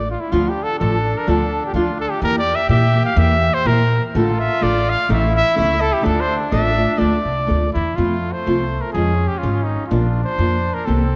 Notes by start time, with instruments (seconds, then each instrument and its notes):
Already playing: upright bass A1
0.11 trumpet F4
0.20 trumpet E4
0.31 upright bass D2, nylon-string guitar D3 F3 A3 D4 F4, trumpet D4 F4
0.49 trumpet G4
0.63 trumpet A4
0.79 upright bass A1, nylon-string guitar F3 A3 D4 F4, trumpet A4
1.18 trumpet A#4
1.27 upright bass D2, nylon-string guitar D3 F3 A3 D4 F4, trumpet A4
1.66 trumpet G4
1.74 upright bass D2, nylon-string guitar F3 A3 D4 F4, trumpet F4
2.00 trumpet A4
2.11 trumpet G4
2.21 upright bass E2, nylon-string guitar E3 A#3 E4 G4, trumpet G4 A#4
2.39 trumpet D5
2.55 trumpet E5
2.69 upright bass A#2, nylon-string guitar E3 A#3 E4 G4, trumpet E5
2.93 nylon-string guitar E3 A#3 E4 G4
3.05 trumpet F5
3.16 upright bass E2, nylon-string guitar E3 A#3 E4 G4, trumpet E5
3.54 trumpet C5
3.65 upright bass A#2, nylon-string guitar E3 A#3 E4 G4, trumpet A#4
4.14 upright bass A1, nylon-string guitar A2 D3 A3 D4 F4 A4, trumpet F4 A4
4.40 trumpet E5
4.61 upright bass A1, nylon-string guitar A3 D4 F4 A4, trumpet D5
4.90 trumpet F5
5.09 upright bass A1, nylon-string guitar A2 E3 A3 C#4 E4 A4, trumpet E4 E5
5.36 trumpet E5
5.55 upright bass C#2, nylon-string guitar A3 C#4 E4 A4, trumpet E5
5.81 trumpet A4
5.93 trumpet G4
6.02 nylon-string guitar D3 A3 D4 F4 A4, trumpet D4
6.06 upright bass D2, trumpet A4
6.20 trumpet C5
6.51 upright bass A1, nylon-string guitar A3 D4 F4 A4, trumpet E5
6.76 nylon-string guitar A3 D4 F4 A4
6.97 upright bass D2, nylon-string guitar D3 A3 D4 F4 A4, trumpet D5
7.25 upright bass C2
7.47 upright bass D2, nylon-string guitar A3 D4 F4 A4
7.73 upright bass E2, trumpet E4
7.96 nylon-string guitar F2 C3 F3 A3 C4 F4, upright bass F2, trumpet A3 F4
8.32 trumpet C5
8.46 upright bass C2, nylon-string guitar F3 A3 C4 F4
8.82 trumpet A#4
8.92 upright bass F2, nylon-string guitar F3 G#3 C#4 F4, trumpet C#4 G#4
9.28 trumpet G4
9.38 trumpet F4
9.43 upright bass G#1, nylon-string guitar F3 G#3 C#4 F4
9.64 trumpet D#4
9.86 trumpet D4 F4
9.90 upright bass A#1, nylon-string guitar A#2 F3 A#3 D4 F4
10.24 trumpet C5
10.38 upright bass F2, nylon-string guitar F3 A#3 D4 F4
10.74 trumpet A#4
10.86 upright bass C2, nylon-string guitar C3 E3 A#3 C4 G4, trumpet C4 A4